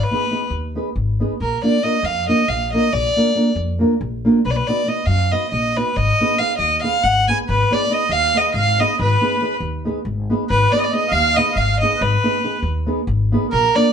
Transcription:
0.03 violin B4
0.11 nylon-string guitar B3 D#4 G#4 B4
0.31 nylon-string guitar B3 D#4 G#4 B4
0.50 upright bass D#2
0.75 nylon-string guitar B3 D#4 G#4 B4
0.96 upright bass G#1
1.20 nylon-string guitar B3 D#4 G#4 B4
1.41 upright bass A#1, violin A#4
1.63 nylon-string guitar A#3 D4 F4 A#4, violin D5
1.83 nylon-string guitar A#3 D4 F4 A#4, violin D#5
2.03 upright bass F2, violin F5
2.28 nylon-string guitar A#3 D4 F4 A#4, violin D#5
2.48 upright bass A#1, violin F5
2.73 nylon-string guitar A#3 D4 F4 A#4, violin D#5
2.92 upright bass A#1, violin D5
3.16 nylon-string guitar A#3 D4 F4 A#4
3.35 nylon-string guitar A#3 D4 F4 A#4
3.55 upright bass F2
3.79 nylon-string guitar A#3 D4 F4 A#4
4.01 upright bass A#1
4.25 nylon-string guitar A#3 D4 F4 A#4
4.45 upright bass B1, violin B4
4.51 violin D5
4.56 violin B4
4.67 nylon-string guitar B3 D#4 F#4 B4, violin D5
4.86 nylon-string guitar B3 D#4 F#4 B4, violin D#5
5.06 upright bass F#2, violin F5
5.31 nylon-string guitar B3 D#4 F#4 B4, violin D#5
5.51 upright bass A#1, violin D#5
5.76 nylon-string guitar B3 D#4 F#4 B4, violin B4
5.96 upright bass G#1, violin D#5
6.21 nylon-string guitar B3 D#4 G#4 B4
6.38 nylon-string guitar B3 D#4 G#4 B4, violin F5
6.58 upright bass D#2, violin D#5
6.83 nylon-string guitar B3 D#4 G#4 B4, violin F5
7.03 upright bass G#1, violin F#5
7.28 nylon-string guitar B3 D#4 G#4 B4, violin G#5
7.48 upright bass G#1, accordion B4, violin B4
7.70 nylon-string guitar B3 D#4 G#4 B4, accordion D5, violin D5
7.90 nylon-string guitar B3 D#4 G#4 B4, accordion D#5, violin D#5
8.09 upright bass D#2, accordion F5, violin F5
8.34 nylon-string guitar B3 D#4 G#4 B4, accordion D#5, violin D#5
8.54 upright bass G#1, violin F5, accordion F5
8.79 nylon-string guitar B3 D#4 G#4 B4, accordion D#5, violin D#5
8.99 upright bass G#1, accordion B4, violin B4
9.21 nylon-string guitar B3 D#4 G#4 B4
9.41 nylon-string guitar B3 D#4 G#4 B4
9.60 upright bass D#2
9.85 nylon-string guitar B3 D#4 G#4 B4
10.05 upright bass G#1
10.30 nylon-string guitar B3 D#4 G#4 B4
10.49 upright bass G#1, accordion B4, violin B4
10.70 nylon-string guitar B3 D#4 G#4 B4, accordion D5, violin D5
10.76 accordion D#5, violin D#5
10.80 accordion D5, violin D5
10.90 nylon-string guitar B3 D#4 G#4 B4, accordion D#5, violin D#5
11.08 upright bass D#2, accordion F5, violin F5
11.34 nylon-string guitar B3 D#4, accordion D#5, violin D#5
11.38 nylon-string guitar G#4 B4
11.52 accordion F5
11.56 upright bass G#1, violin F5
11.77 accordion D#5, violin D#5
11.82 nylon-string guitar B3 D#4 G#4 B4
11.97 accordion B4
12.01 upright bass G#1, violin B4
12.23 nylon-string guitar B3 D#4 G#4 B4
12.43 nylon-string guitar B3 D#4 G#4 B4
12.62 upright bass D#2
12.86 nylon-string guitar B3 D#4 G#4 B4
13.07 upright bass G#1
13.32 nylon-string guitar B3 D#4 G#4 B4
13.50 upright bass A#1, accordion A#4, violin A#4
13.75 nylon-string guitar A#3 D4 F4 A#4, accordion D5, violin D5

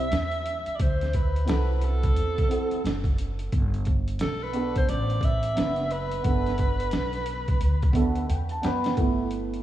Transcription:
Already playing: alto saxophone E5
0.11 upright bass E2, snare, closed hi-hat
0.31 closed hi-hat
0.46 closed hi-hat
0.66 muted upright bass stroke, closed hi-hat
0.76 alto saxophone D5, kick, closed hi-hat
0.80 upright bass D2, alto saxophone C5
1.01 snare, closed hi-hat
1.13 alto saxophone B4, kick, closed hi-hat
1.36 closed hi-hat
1.45 upright bass C2, grand piano C4 E4 F#4, closed hi-hat
1.49 grand piano A4, alto saxophone B4, snare
1.78 alto saxophone B4, closed hi-hat
1.85 alto saxophone A4
2.03 kick, closed hi-hat
2.16 upright bass E2, closed hi-hat
2.38 kick, closed hi-hat
2.48 grand piano C4 E4 F#4 A4, closed hi-hat
2.71 muted upright bass stroke, closed hi-hat
2.84 upright bass F#1, snare, closed hi-hat
3.04 kick, closed hi-hat
3.18 closed hi-hat
3.39 closed hi-hat
3.52 upright bass G1, kick, closed hi-hat
3.74 closed hi-hat
3.85 kick, closed hi-hat
4.08 closed hi-hat
4.19 upright bass B1, alto saxophone A4, snare, closed hi-hat
4.44 alto saxophone B4
4.53 grand piano B3 D4 F#4 A4, closed hi-hat
4.76 alto saxophone C5, kick, closed hi-hat
4.88 upright bass A1, alto saxophone D5, closed hi-hat
5.10 closed hi-hat
5.21 alto saxophone E5, kick, closed hi-hat
5.43 closed hi-hat
5.54 upright bass F#1, grand piano B3 D4 F#4 B4, closed hi-hat
5.58 snare
5.76 closed hi-hat
5.91 alto saxophone B4, closed hi-hat
6.11 closed hi-hat
6.22 upright bass G1, grand piano B3 D4 F#4 A4, kick, closed hi-hat
6.46 snare, closed hi-hat
6.58 kick, closed hi-hat
6.80 closed hi-hat
6.91 upright bass B1, snare, closed hi-hat
7.13 closed hi-hat
7.26 closed hi-hat
7.48 kick, closed hi-hat
7.61 upright bass D2, closed hi-hat
7.82 kick, closed hi-hat
7.92 grand piano B3 D4 F#4 A4 E5, kick, closed hi-hat
8.16 grand piano F#5, closed hi-hat
8.29 upright bass E2, closed hi-hat
8.49 grand piano A5, closed hi-hat
8.62 upright bass F#2, grand piano B3 D4 F#4 B4 G5, snare, closed hi-hat
8.84 snare, closed hi-hat
8.97 upright bass G1, grand piano A3 B3 E4, kick, closed hi-hat
9.31 closed hi-hat
9.54 closed hi-hat

